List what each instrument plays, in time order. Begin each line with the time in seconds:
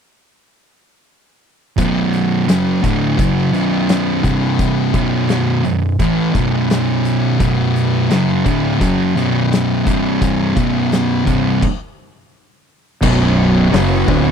1.78 distorted electric guitar B1 F#2 B2, kick, closed hi-hat
2.13 closed hi-hat
2.48 distorted electric guitar F#2 C#3 F#3, snare, closed hi-hat
2.82 distorted electric guitar D2 A2 D3, kick, closed hi-hat
3.18 distorted electric guitar F#2 C#3 F#3, kick, closed hi-hat
3.52 distorted electric guitar B1 F#2 B2, closed hi-hat
3.89 snare, closed hi-hat
4.22 distorted electric guitar C2 G2 C3, kick, closed hi-hat
4.59 kick, closed hi-hat
4.94 distorted electric guitar B1 F#2 B2, kick, closed hi-hat
5.29 snare, closed hi-hat
5.65 distorted electric guitar B1 F#2, closed hi-hat
6.00 distorted electric guitar A2 E3 A3, kick, closed hi-hat
6.35 distorted electric guitar B1 F#2 B2, kick, closed hi-hat
6.70 snare, closed hi-hat
7.05 closed hi-hat
7.39 distorted electric guitar B1 F#2 B2, kick, closed hi-hat
7.76 closed hi-hat
8.10 distorted electric guitar F#2 C#3 F#3, snare, closed hi-hat
8.44 distorted electric guitar D2 A2 D3, kick, closed hi-hat
8.80 distorted electric guitar F#2 C#3 F#3, kick, closed hi-hat
9.16 distorted electric guitar B1 F#2 B2, closed hi-hat
9.53 snare, closed hi-hat
9.86 distorted electric guitar C2 G2 C3, kick, closed hi-hat
10.22 kick, closed hi-hat
10.57 distorted electric guitar B1 F#2 B2, kick, closed hi-hat
10.92 snare, closed hi-hat
11.25 distorted electric guitar C2 G2 C3, kick, closed hi-hat
11.62 kick, crash
12.99 fingered electric bass B0, distorted electric guitar B1 F#2 B2, string machine B3 F#4 C#5, kick, crash
13.73 fingered electric bass F#1, distorted electric guitar F#2 C#3 F#3, snare, open hi-hat
14.07 fingered electric bass D1, distorted electric guitar D2 A2 D3, kick